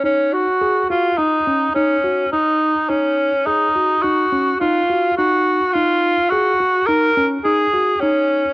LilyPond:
<<
  \new Staff \with { instrumentName = "Tenor saxophone" } { \time 5/4 \key fis \major \tempo 4 = 105 cis'8 fis'4 eis'8 dis'4 cis'4 dis'4 | cis'4 dis'4 fis'4 eis'4 fis'4 | eis'4 fis'4 ais'4 gis'4 cis'4 | }
  \new Staff \with { instrumentName = "Tine electric piano" } { \time 5/4 \key fis \major dis'4 gis'8 fis'8 dis'8 cis'8 dis'8 fis'8 dis'4 | dis'4 gis'8 fis'8 dis'8 cis'8 dis'8 fis'8 dis'4 | dis'4 gis'8 fis'8 dis'8 cis'8 dis'8 fis'8 dis'4 | }
>>